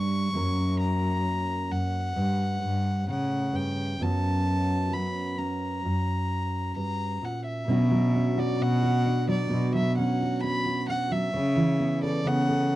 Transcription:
0.00 0.14 G2 medium
0.00 0.27 G2 medium
0.00 0.28 G3 medium
0.00 0.28 D4 soft
0.00 0.79 C#6 medium
0.33 1.77 F#2 medium
0.33 1.70 F#2 medium
0.33 2.19 F#3 soft
0.33 2.12 A#3 soft
0.33 2.18 C#4 soft
0.33 2.13 A#4 medium
0.80 1.73 A#5 medium
1.71 2.16 F#2 soft
1.71 3.09 F#5 medium
2.16 3.08 G2 medium
2.16 2.53 G2 medium
2.63 2.99 G2 medium
3.08 3.53 A2 soft
3.08 3.80 C#3 medium
3.08 3.57 F#5 medium
3.53 4.00 G2 soft
3.53 4.04 G5 medium
4.00 5.84 F#2 medium
4.00 5.44 F#2 medium
4.00 4.90 F#3 soft
4.00 5.79 B3 soft
4.00 5.37 C#4 soft
4.00 7.70 F#4 soft
4.00 4.95 A5 medium
4.92 5.78 F#3 soft
4.92 5.40 B5 medium
5.38 7.68 C#4 soft
5.38 6.76 A#5 medium
5.85 6.76 F#2 medium
6.76 7.22 G2 soft
6.76 7.26 A#5 medium
7.22 7.68 A#2 soft
7.22 7.46 F#5 medium
7.47 8.41 E5 medium
7.68 9.49 B2 medium
7.68 8.40 B2 medium
7.68 7.90 F#3 medium
7.68 8.15 C#4 medium
7.68 9.05 D4 medium
7.68 8.36 F#4 medium
7.91 9.27 F#3 medium
8.16 9.09 C#4 medium
8.38 8.82 F#4 medium
8.38 8.63 D5 medium
8.60 9.32 B2 medium
8.60 9.29 F#5 medium
8.83 10.20 F#4 medium
9.06 10.88 D4 medium
9.28 9.73 F#3 medium
9.28 9.72 D5 medium
9.50 11.33 B2 medium
9.50 9.87 B2 medium
9.74 11.10 F#3 medium
9.74 9.96 E5 medium
9.98 10.42 C#4 medium
9.98 10.40 F#5 medium
10.22 10.64 F#4 medium
10.44 11.29 C#4 medium
10.44 10.86 B5 medium
10.65 11.34 F#4 medium
10.89 11.29 D4 medium
10.89 11.14 F#5 medium
11.11 11.29 F#3 medium
11.11 12.03 E5 medium
11.33 12.05 C#3 medium
11.33 11.57 C#3 medium
11.56 12.76 E3 medium
11.80 12.24 B3 medium
12.03 12.47 A4 medium
12.03 12.28 D5 medium
12.24 12.76 C#3 medium
12.24 12.76 B3 medium
12.24 12.76 F#5 medium
12.49 12.76 A4 medium

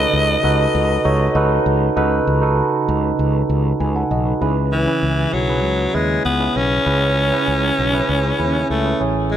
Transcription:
0.00 0.40 C#3 medium
0.00 0.43 D#4 medium
0.00 0.44 F#4 medium
0.00 0.44 A4 medium
0.00 0.45 B4 medium
0.00 1.36 D#5 loud
0.13 0.35 C#2 loud
0.43 0.66 C#2 medium
0.43 0.84 D#4 medium
0.43 0.84 F#4 medium
0.43 0.85 A4 medium
0.43 0.85 B4 loud
0.75 0.96 C#2 loud
1.04 1.27 C#2 medium
1.04 1.25 D#4 medium
1.04 1.25 F#4 medium
1.04 1.25 A4 medium
1.04 1.25 C#5 medium
1.35 1.57 C#2 loud
1.35 1.76 D#4 medium
1.35 1.76 F#4 medium
1.35 1.77 A4 medium
1.35 1.77 B4 medium
1.66 1.88 C#2 medium
1.96 2.19 C#2 loud
1.96 2.85 C#3 medium
1.96 2.27 D#4 medium
1.96 2.27 F#4 medium
1.96 2.27 A4 medium
1.96 2.28 B4 loud
2.27 2.60 C#2 medium
2.42 3.24 D#4 medium
2.42 3.24 F#4 medium
2.42 3.24 A4 medium
2.42 3.25 B4 medium
2.88 3.11 C#2 medium
3.19 3.41 C#2 loud
3.49 3.72 C#2 medium
3.80 4.02 C#2 medium
3.80 3.95 B4 medium
3.80 3.95 G#5 medium
3.96 4.10 A4 medium
3.96 4.10 F#5 medium
4.11 4.33 B1 medium
4.11 4.26 F#4 medium
4.11 4.26 D#5 medium
4.26 4.56 D#4 medium
4.26 4.41 B4 medium
4.41 4.86 C#2 medium
4.41 5.29 C#3 medium
4.41 4.72 C#4 medium
4.41 4.72 E4 medium
4.41 4.72 G#4 medium
4.41 4.72 B4 medium
4.73 5.35 E3 medium
4.87 5.28 C#4 medium
4.87 5.28 E4 medium
4.87 5.29 G#4 medium
4.87 5.29 B4 medium
5.03 5.25 C#2 medium
5.33 5.64 B1 medium
5.33 5.96 F#3 medium
5.48 5.79 C#4 medium
5.48 5.79 E4 medium
5.48 5.79 G#4 medium
5.48 5.80 B4 medium
5.64 5.86 C#2 medium
5.93 6.17 D#2 medium
5.93 6.24 G#3 medium
5.93 6.25 C#4 medium
5.93 6.25 E4 medium
5.93 6.25 G#4 medium
5.93 6.25 B4 medium
6.25 6.47 C#2 medium
6.25 6.58 B3 medium
6.40 6.71 C#4 medium
6.40 6.71 E4 medium
6.40 6.71 G#4 medium
6.40 6.71 B4 medium
6.56 6.78 B1 medium
6.56 8.70 C#4 loud
6.86 7.30 C#2 medium
6.86 7.74 C#3 medium
6.86 7.17 C#4 medium
6.86 7.17 E4 medium
6.86 7.17 G#4 medium
6.86 7.17 B4 medium
7.32 7.73 C#4 medium
7.32 7.73 E4 medium
7.32 7.74 G#4 medium
7.32 7.74 B4 medium
7.48 7.70 C#2 medium
7.79 8.00 B1 medium
7.93 8.24 C#4 medium
7.93 8.24 E4 medium
7.93 8.24 G#4 medium
7.93 8.25 B4 medium
8.09 8.31 C#2 medium
8.38 8.62 D#2 medium
8.38 8.70 C#4 medium
8.38 8.70 E4 medium
8.38 8.70 G#4 medium
8.38 8.70 B4 medium
8.70 8.92 C#2 medium
8.70 9.02 A3 medium
8.85 8.99 C#4 medium
8.85 8.99 E4 medium
8.85 9.00 G#4 medium
8.85 9.01 B4 medium
9.00 9.37 A1 medium
9.00 9.37 A2 medium
9.00 9.37 C#4 medium
9.00 9.37 E4 medium
9.00 9.37 G#4 medium
9.00 9.37 C#5 medium
9.31 9.37 G#3 medium

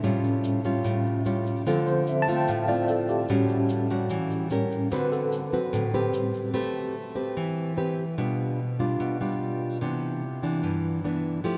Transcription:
0.03 1.62 A2 soft
0.03 0.83 A2 medium
0.03 1.62 G3 soft
0.03 0.61 G3 medium
0.03 1.63 C#4 soft
0.03 0.62 C#4 medium
0.03 0.62 F4 medium
0.03 shaker medium
0.24 shaker soft
0.44 shaker medium
0.64 1.22 G3 medium
0.64 1.22 C#4 medium
0.64 1.23 F4 medium
0.64 shaker soft
0.85 1.64 A2 medium
0.85 shaker medium
1.05 shaker soft
1.25 1.63 G3 medium
1.25 1.63 C#4 medium
1.25 1.63 F4 medium
1.25 shaker medium
1.46 shaker soft
1.66 1.93 D3 soft
1.66 2.46 D3 medium
1.66 1.93 F3 soft
1.66 2.07 A3 medium
1.66 1.94 C4 medium
1.66 2.07 C4 medium
1.66 2.07 F4 medium
1.66 1.87 A4 medium
1.66 shaker medium
1.86 2.06 C5 medium
1.86 shaker soft
2.07 2.21 E5 medium
2.07 shaker medium
2.22 2.35 A5 medium
2.28 2.65 A3 medium
2.28 2.65 C4 medium
2.28 2.65 F4 medium
2.28 shaker soft
2.36 2.48 G5 medium
2.48 3.27 A2 medium
2.48 2.68 F5 medium
2.48 shaker medium
2.68 3.26 A3 medium
2.68 3.26 C4 medium
2.68 3.26 F4 medium
2.68 2.88 D5 medium
2.68 shaker soft
2.88 3.09 A4 medium
2.88 shaker medium
3.08 4.07 G4 medium
3.08 shaker soft
3.28 3.87 A2 soft
3.28 4.09 A2 medium
3.28 3.87 G3 soft
3.28 3.87 G3 medium
3.28 3.88 C#4 medium
3.28 3.87 C#4 medium
3.28 3.87 F#4 medium
3.28 shaker medium
3.49 shaker soft
3.69 shaker medium
3.90 4.48 G3 medium
3.90 4.48 C#4 medium
3.90 4.48 F#4 medium
3.90 shaker soft
4.10 4.49 E3 medium
4.10 shaker medium
4.31 shaker soft
4.50 4.78 A2 soft
4.50 4.78 G3 soft
4.50 4.88 C#4 medium
4.50 4.78 C#4 soft
4.50 4.89 G4 medium
4.50 4.89 A#4 medium
4.50 shaker medium
4.71 shaker soft
4.92 5.71 D3 medium
4.92 5.50 C4 medium
4.92 5.50 F#4 medium
4.92 5.50 B4 medium
4.92 5.13 B4 medium
4.92 shaker medium
5.12 5.50 A4 medium
5.12 shaker soft
5.32 shaker medium
5.52 6.10 D3 soft
5.52 6.11 F#3 soft
5.52 5.90 C4 medium
5.52 6.11 C4 soft
5.52 5.90 F#4 medium
5.52 5.91 B4 medium
5.52 shaker soft
5.73 6.12 A2 medium
5.73 shaker medium
5.94 6.52 C4 medium
5.94 6.52 G4 medium
5.94 6.52 B4 medium
5.94 shaker soft
6.12 6.52 A2 soft
6.12 6.52 G3 soft
6.12 6.52 C4 soft
6.12 shaker medium
6.34 shaker soft
6.54 7.34 A3 medium
6.54 6.95 C4 medium
6.54 6.95 G4 medium
6.54 6.95 B4 medium
7.15 7.73 C4 medium
7.15 7.74 G4 medium
7.15 7.74 B4 medium
7.37 8.16 E3 medium
7.77 8.03 C4 soft
7.77 8.03 G4 medium
7.77 8.04 B4 medium
8.18 8.97 B2 medium
8.18 8.58 G3 medium
8.18 8.59 D4 medium
8.18 8.59 F4 medium
8.79 9.17 G3 medium
8.79 9.17 D4 medium
8.79 9.17 F4 medium
9.00 9.79 B2 medium
9.20 9.78 G3 medium
9.20 9.78 D4 medium
9.20 9.78 F4 medium
9.81 10.61 C3 medium
9.81 10.22 E3 medium
9.81 10.22 B3 soft
9.81 10.22 D4 medium
10.43 11.01 E3 medium
10.43 11.01 B3 medium
10.43 11.01 D4 medium
10.63 11.42 G2 medium
11.04 11.41 E3 medium
11.04 11.42 B3 medium
11.04 11.42 D4 medium
11.44 11.58 F3 medium
11.44 11.58 A3 medium
11.44 11.58 E4 soft
11.44 11.58 G4 medium

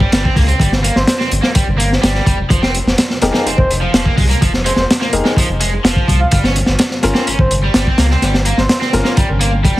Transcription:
0.00 0.11 G3 medium
0.00 kick medium
0.12 0.30 G1 medium
0.12 0.24 G3 medium
0.12 snare loud
0.12 closed hi-hat medium
0.24 0.35 C4 medium
0.24 kick loud
0.36 0.53 C#2 loud
0.36 0.42 A#3 loud
0.36 kick loud
0.36 open hi-hat medium
0.48 0.60 C4 medium
0.48 closed hi-hat soft
0.60 0.90 G1 loud
0.60 0.70 G3 medium
0.60 kick loud
0.60 closed hi-hat medium
0.72 snare soft
0.84 0.94 A#3 loud
0.84 closed hi-hat medium
0.96 1.04 G1 loud
0.96 1.04 C5 medium
0.96 snare soft
1.07 1.15 C5 medium
1.07 snare loud
1.07 closed hi-hat medium
1.20 1.30 C4 medium
1.20 snare soft
1.31 1.40 G1 medium
1.31 closed hi-hat medium
1.42 1.49 A#3 medium
1.42 snare soft
1.55 1.65 G3 medium
1.55 kick loud
1.55 closed hi-hat medium
1.68 1.98 G1 medium
1.78 1.89 A#3 loud
1.78 closed hi-hat medium
1.93 snare soft
2.02 2.20 G1 loud
2.02 2.25 G3 medium
2.02 snare loud
2.02 closed hi-hat medium
2.15 snare soft
2.26 2.44 F1 loud
2.26 2.37 G3 loud
2.26 kick loud
2.26 closed hi-hat medium
2.50 2.81 F1 loud
2.50 2.61 F3 loud
2.50 kick loud
2.50 closed hi-hat medium
2.62 2.73 C4 loud
2.62 snare medium
2.74 closed hi-hat medium
2.86 2.95 F1 loud
2.86 snare soft
2.98 snare loud
2.98 closed hi-hat medium
3.10 snare soft
3.22 3.31 F1 medium
3.22 3.44 D#4 loud
3.22 3.44 G4 loud
3.22 3.44 G#4 medium
3.22 3.44 A#4 loud
3.22 snare soft
3.22 closed hi-hat medium
3.34 3.45 A#3 medium
3.34 snare medium
3.45 3.55 F1 soft
3.45 3.56 C4 loud
3.45 closed hi-hat medium
3.57 3.88 F1 medium
3.57 3.71 C5 medium
3.57 kick medium
3.71 closed hi-hat medium
3.82 3.92 F3 medium
3.93 4.10 F1 medium
3.93 4.05 F3 medium
3.93 snare loud
3.93 closed hi-hat medium
4.06 4.16 A#3 medium
4.06 kick medium
4.18 4.34 C2 loud
4.18 4.24 G#3 loud
4.18 kick loud
4.18 open hi-hat medium
4.30 4.41 A#3 medium
4.30 closed hi-hat soft
4.41 4.72 F1 loud
4.41 4.52 F3 medium
4.41 kick loud
4.41 closed hi-hat medium
4.54 snare soft
4.65 4.76 G#3 loud
4.65 4.73 C5 medium
4.65 closed hi-hat medium
4.76 4.85 F1 loud
4.76 4.85 C5 medium
4.76 snare soft
4.91 snare loud
4.91 closed hi-hat medium
5.01 5.11 A#3 medium
5.01 snare soft
5.13 5.21 F1 medium
5.13 5.34 D#4 loud
5.13 5.34 G4 medium
5.13 5.34 G#4 medium
5.13 5.34 A#4 loud
5.13 closed hi-hat medium
5.25 5.31 G#3 medium
5.25 snare medium
5.37 5.47 F3 medium
5.37 kick loud
5.37 closed hi-hat medium
5.48 5.79 F1 medium
5.61 5.71 G#3 loud
5.61 closed hi-hat medium
5.84 6.01 F1 medium
5.84 6.07 F3 medium
5.84 snare loud
5.84 closed hi-hat loud
5.96 kick loud
6.08 6.25 C2 loud
6.08 6.18 F3 loud
6.08 kick loud
6.08 closed hi-hat medium
6.20 6.27 F5 medium
6.31 6.62 G1 loud
6.31 6.42 G3 loud
6.31 6.39 F5 medium
6.31 kick loud
6.31 closed hi-hat medium
6.44 6.54 C#4 loud
6.44 snare medium
6.56 closed hi-hat medium
6.66 6.76 G1 medium
6.66 snare soft
6.79 snare loud
6.79 closed hi-hat medium
6.91 snare soft
7.03 7.12 G1 medium
7.03 7.25 C#4 loud
7.03 7.25 F4 loud
7.03 7.25 A#4 loud
7.03 snare soft
7.03 closed hi-hat medium
7.15 7.26 C4 medium
7.15 snare medium
7.27 7.37 G1 soft
7.27 7.37 C#4 loud
7.27 closed hi-hat medium
7.39 7.69 G1 medium
7.39 7.52 C5 medium
7.39 kick loud
7.51 closed hi-hat medium
7.63 7.74 G3 medium
7.74 7.92 G1 medium
7.74 7.86 G3 medium
7.74 snare loud
7.74 closed hi-hat medium
7.87 7.97 C4 medium
7.87 kick medium
7.98 8.15 C#2 loud
7.98 8.05 A#3 loud
7.98 snare loud
7.98 closed hi-hat medium
8.11 8.22 C4 medium
8.11 snare soft
8.22 8.52 G1 loud
8.22 8.33 G3 medium
8.22 snare soft
8.22 closed hi-hat medium
8.34 snare soft
8.45 8.56 A#3 loud
8.45 closed hi-hat medium
8.57 8.66 G1 loud
8.57 8.65 C5 medium
8.57 snare soft
8.69 8.77 C5 medium
8.69 snare loud
8.69 closed hi-hat medium
8.82 8.92 C4 medium
8.82 snare soft
8.93 9.02 G1 medium
8.93 9.15 C#4 medium
8.93 9.15 F4 medium
8.93 9.15 A#4 loud
8.93 snare soft
8.93 closed hi-hat medium
9.05 9.12 A#3 medium
9.05 snare medium
9.17 9.27 G3 medium
9.17 kick loud
9.17 closed hi-hat medium
9.29 9.66 G1 loud
9.40 9.51 A#3 loud
9.40 closed hi-hat medium
9.64 9.80 F1 medium
9.64 9.80 G3 medium
9.64 kick loud
9.64 closed hi-hat medium

